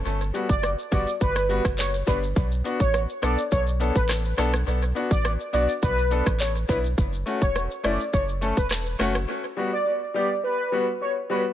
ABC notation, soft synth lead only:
X:1
M:4/4
L:1/16
Q:1/4=104
K:Bm
V:1 name="Soft synth lead"
z3 d2 z d2 B3 z c z B z | z3 c2 z d2 c z2 B z4 | z3 d2 z d2 B3 z c z B z | z3 c2 z d2 c z2 B z4 |
z3 d2 z d2 B3 z c z B z |]